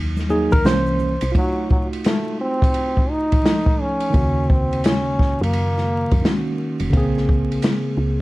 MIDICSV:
0, 0, Header, 1, 5, 480
1, 0, Start_track
1, 0, Tempo, 697674
1, 927, Time_signature, 4, 2, 24, 8
1, 5650, End_track
2, 0, Start_track
2, 0, Title_t, "Trombone"
2, 0, Program_c, 0, 57
2, 942, Note_on_c, 0, 54, 96
2, 1158, Note_off_c, 0, 54, 0
2, 1182, Note_on_c, 0, 54, 81
2, 1286, Note_off_c, 0, 54, 0
2, 1422, Note_on_c, 0, 57, 86
2, 1638, Note_off_c, 0, 57, 0
2, 1656, Note_on_c, 0, 60, 109
2, 2135, Note_on_c, 0, 63, 113
2, 2145, Note_off_c, 0, 60, 0
2, 2622, Note_on_c, 0, 61, 106
2, 2632, Note_off_c, 0, 63, 0
2, 3098, Note_on_c, 0, 60, 96
2, 3108, Note_off_c, 0, 61, 0
2, 3337, Note_on_c, 0, 61, 102
2, 3347, Note_off_c, 0, 60, 0
2, 3728, Note_on_c, 0, 58, 92
2, 3738, Note_off_c, 0, 61, 0
2, 4532, Note_off_c, 0, 58, 0
2, 5650, End_track
3, 0, Start_track
3, 0, Title_t, "Tine electric piano"
3, 0, Program_c, 1, 4
3, 0, Note_on_c, 1, 54, 65
3, 0, Note_on_c, 1, 58, 55
3, 0, Note_on_c, 1, 63, 66
3, 193, Note_off_c, 1, 54, 0
3, 197, Note_off_c, 1, 58, 0
3, 199, Note_off_c, 1, 63, 0
3, 202, Note_on_c, 1, 54, 52
3, 206, Note_on_c, 1, 58, 51
3, 207, Note_on_c, 1, 63, 61
3, 209, Note_on_c, 1, 68, 93
3, 360, Note_on_c, 1, 70, 104
3, 364, Note_off_c, 1, 68, 0
3, 420, Note_off_c, 1, 54, 0
3, 422, Note_off_c, 1, 58, 0
3, 423, Note_off_c, 1, 63, 0
3, 444, Note_on_c, 1, 52, 62
3, 446, Note_on_c, 1, 58, 55
3, 450, Note_off_c, 1, 70, 0
3, 451, Note_on_c, 1, 61, 67
3, 453, Note_on_c, 1, 72, 101
3, 789, Note_off_c, 1, 52, 0
3, 790, Note_off_c, 1, 58, 0
3, 792, Note_off_c, 1, 61, 0
3, 902, Note_off_c, 1, 72, 0
3, 906, Note_on_c, 1, 65, 60
3, 924, Note_on_c, 1, 57, 56
3, 940, Note_on_c, 1, 63, 57
3, 956, Note_on_c, 1, 66, 70
3, 2329, Note_off_c, 1, 65, 0
3, 2338, Note_off_c, 1, 57, 0
3, 2346, Note_off_c, 1, 63, 0
3, 2354, Note_off_c, 1, 66, 0
3, 2355, Note_on_c, 1, 53, 45
3, 2366, Note_on_c, 1, 57, 45
3, 2372, Note_on_c, 1, 63, 44
3, 2381, Note_on_c, 1, 69, 50
3, 2822, Note_on_c, 1, 51, 58
3, 2838, Note_on_c, 1, 58, 59
3, 2841, Note_off_c, 1, 53, 0
3, 2846, Note_off_c, 1, 57, 0
3, 2849, Note_off_c, 1, 63, 0
3, 2854, Note_off_c, 1, 69, 0
3, 2855, Note_on_c, 1, 49, 61
3, 2874, Note_on_c, 1, 66, 67
3, 4247, Note_off_c, 1, 51, 0
3, 4255, Note_off_c, 1, 58, 0
3, 4264, Note_off_c, 1, 49, 0
3, 4273, Note_off_c, 1, 66, 0
3, 4278, Note_on_c, 1, 51, 61
3, 4285, Note_on_c, 1, 58, 55
3, 4294, Note_on_c, 1, 61, 56
3, 4303, Note_on_c, 1, 66, 61
3, 4745, Note_on_c, 1, 49, 71
3, 4755, Note_off_c, 1, 58, 0
3, 4762, Note_off_c, 1, 51, 0
3, 4763, Note_on_c, 1, 58, 70
3, 4771, Note_off_c, 1, 61, 0
3, 4775, Note_off_c, 1, 66, 0
3, 4779, Note_on_c, 1, 60, 71
3, 4796, Note_on_c, 1, 68, 85
3, 5650, Note_off_c, 1, 49, 0
3, 5650, Note_off_c, 1, 58, 0
3, 5650, Note_off_c, 1, 60, 0
3, 5650, Note_off_c, 1, 68, 0
3, 5650, End_track
4, 0, Start_track
4, 0, Title_t, "FM bass"
4, 0, Program_c, 2, 39
4, 0, Note_on_c, 2, 39, 100
4, 334, Note_off_c, 2, 39, 0
4, 367, Note_on_c, 2, 39, 91
4, 443, Note_off_c, 2, 39, 0
4, 447, Note_on_c, 2, 36, 116
4, 812, Note_off_c, 2, 36, 0
4, 841, Note_on_c, 2, 36, 92
4, 920, Note_off_c, 2, 36, 0
4, 2850, Note_on_c, 2, 39, 93
4, 3693, Note_off_c, 2, 39, 0
4, 3723, Note_on_c, 2, 42, 93
4, 4174, Note_off_c, 2, 42, 0
4, 4211, Note_on_c, 2, 42, 91
4, 4285, Note_off_c, 2, 42, 0
4, 4681, Note_on_c, 2, 29, 85
4, 4760, Note_off_c, 2, 29, 0
4, 4771, Note_on_c, 2, 34, 88
4, 5221, Note_off_c, 2, 34, 0
4, 5486, Note_on_c, 2, 37, 86
4, 5650, Note_off_c, 2, 37, 0
4, 5650, End_track
5, 0, Start_track
5, 0, Title_t, "Drums"
5, 115, Note_on_c, 9, 63, 67
5, 115, Note_on_c, 9, 82, 54
5, 130, Note_on_c, 9, 38, 37
5, 183, Note_off_c, 9, 63, 0
5, 183, Note_off_c, 9, 82, 0
5, 199, Note_off_c, 9, 38, 0
5, 203, Note_on_c, 9, 82, 43
5, 271, Note_off_c, 9, 82, 0
5, 354, Note_on_c, 9, 63, 69
5, 354, Note_on_c, 9, 82, 45
5, 361, Note_on_c, 9, 51, 66
5, 365, Note_on_c, 9, 36, 98
5, 423, Note_off_c, 9, 63, 0
5, 423, Note_off_c, 9, 82, 0
5, 430, Note_off_c, 9, 51, 0
5, 434, Note_off_c, 9, 36, 0
5, 445, Note_on_c, 9, 82, 65
5, 456, Note_on_c, 9, 38, 126
5, 460, Note_on_c, 9, 44, 60
5, 460, Note_on_c, 9, 51, 75
5, 514, Note_off_c, 9, 82, 0
5, 525, Note_off_c, 9, 38, 0
5, 529, Note_off_c, 9, 44, 0
5, 529, Note_off_c, 9, 51, 0
5, 593, Note_on_c, 9, 82, 43
5, 662, Note_off_c, 9, 82, 0
5, 683, Note_on_c, 9, 64, 54
5, 683, Note_on_c, 9, 82, 39
5, 751, Note_off_c, 9, 64, 0
5, 751, Note_off_c, 9, 82, 0
5, 832, Note_on_c, 9, 51, 69
5, 834, Note_on_c, 9, 82, 56
5, 900, Note_off_c, 9, 51, 0
5, 903, Note_off_c, 9, 82, 0
5, 927, Note_on_c, 9, 36, 97
5, 929, Note_on_c, 9, 51, 63
5, 996, Note_off_c, 9, 36, 0
5, 998, Note_off_c, 9, 51, 0
5, 1173, Note_on_c, 9, 36, 93
5, 1242, Note_off_c, 9, 36, 0
5, 1328, Note_on_c, 9, 51, 55
5, 1397, Note_off_c, 9, 51, 0
5, 1406, Note_on_c, 9, 44, 54
5, 1406, Note_on_c, 9, 51, 75
5, 1420, Note_on_c, 9, 38, 116
5, 1475, Note_off_c, 9, 44, 0
5, 1475, Note_off_c, 9, 51, 0
5, 1488, Note_off_c, 9, 38, 0
5, 1804, Note_on_c, 9, 36, 102
5, 1814, Note_on_c, 9, 51, 65
5, 1873, Note_off_c, 9, 36, 0
5, 1882, Note_off_c, 9, 51, 0
5, 1885, Note_on_c, 9, 51, 72
5, 1954, Note_off_c, 9, 51, 0
5, 2043, Note_on_c, 9, 36, 74
5, 2112, Note_off_c, 9, 36, 0
5, 2283, Note_on_c, 9, 51, 58
5, 2287, Note_on_c, 9, 36, 86
5, 2352, Note_off_c, 9, 51, 0
5, 2356, Note_off_c, 9, 36, 0
5, 2377, Note_on_c, 9, 38, 107
5, 2380, Note_on_c, 9, 44, 47
5, 2380, Note_on_c, 9, 51, 75
5, 2446, Note_off_c, 9, 38, 0
5, 2449, Note_off_c, 9, 44, 0
5, 2449, Note_off_c, 9, 51, 0
5, 2520, Note_on_c, 9, 36, 90
5, 2589, Note_off_c, 9, 36, 0
5, 2755, Note_on_c, 9, 51, 63
5, 2823, Note_off_c, 9, 51, 0
5, 2849, Note_on_c, 9, 36, 97
5, 2849, Note_on_c, 9, 51, 62
5, 2918, Note_off_c, 9, 36, 0
5, 2918, Note_off_c, 9, 51, 0
5, 3095, Note_on_c, 9, 36, 93
5, 3164, Note_off_c, 9, 36, 0
5, 3251, Note_on_c, 9, 51, 53
5, 3320, Note_off_c, 9, 51, 0
5, 3329, Note_on_c, 9, 44, 56
5, 3329, Note_on_c, 9, 51, 76
5, 3342, Note_on_c, 9, 38, 110
5, 3397, Note_off_c, 9, 44, 0
5, 3397, Note_off_c, 9, 51, 0
5, 3411, Note_off_c, 9, 38, 0
5, 3572, Note_on_c, 9, 36, 88
5, 3584, Note_on_c, 9, 38, 35
5, 3641, Note_off_c, 9, 36, 0
5, 3653, Note_off_c, 9, 38, 0
5, 3738, Note_on_c, 9, 51, 73
5, 3807, Note_off_c, 9, 51, 0
5, 3807, Note_on_c, 9, 51, 77
5, 3876, Note_off_c, 9, 51, 0
5, 3974, Note_on_c, 9, 38, 32
5, 4043, Note_off_c, 9, 38, 0
5, 4207, Note_on_c, 9, 51, 54
5, 4209, Note_on_c, 9, 36, 82
5, 4275, Note_off_c, 9, 51, 0
5, 4278, Note_off_c, 9, 36, 0
5, 4301, Note_on_c, 9, 38, 111
5, 4304, Note_on_c, 9, 44, 47
5, 4304, Note_on_c, 9, 51, 68
5, 4369, Note_off_c, 9, 38, 0
5, 4373, Note_off_c, 9, 44, 0
5, 4373, Note_off_c, 9, 51, 0
5, 4675, Note_on_c, 9, 51, 63
5, 4744, Note_off_c, 9, 51, 0
5, 4769, Note_on_c, 9, 36, 104
5, 4770, Note_on_c, 9, 51, 64
5, 4838, Note_off_c, 9, 36, 0
5, 4839, Note_off_c, 9, 51, 0
5, 4933, Note_on_c, 9, 38, 32
5, 5002, Note_off_c, 9, 38, 0
5, 5015, Note_on_c, 9, 36, 88
5, 5083, Note_off_c, 9, 36, 0
5, 5171, Note_on_c, 9, 51, 50
5, 5240, Note_off_c, 9, 51, 0
5, 5245, Note_on_c, 9, 44, 58
5, 5245, Note_on_c, 9, 51, 78
5, 5258, Note_on_c, 9, 38, 115
5, 5314, Note_off_c, 9, 44, 0
5, 5314, Note_off_c, 9, 51, 0
5, 5327, Note_off_c, 9, 38, 0
5, 5650, End_track
0, 0, End_of_file